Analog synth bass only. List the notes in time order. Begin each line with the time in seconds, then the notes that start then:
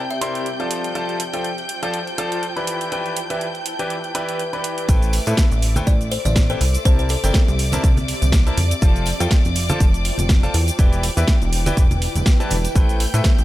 4.89 A1
5.27 A2
5.52 A1
5.87 A1
6.25 A1
6.61 C2
6.85 C2
7.24 G1
7.48 C2
7.84 C2
8.22 C2
8.58 F2
8.82 F1
9.20 F2
9.45 F1
9.80 F1
10.19 F1
10.54 E2
10.79 E1
11.17 E2
11.42 E1
11.77 E1
12.15 E1
12.51 E1
12.76 A1
13.14 A2
13.38 A1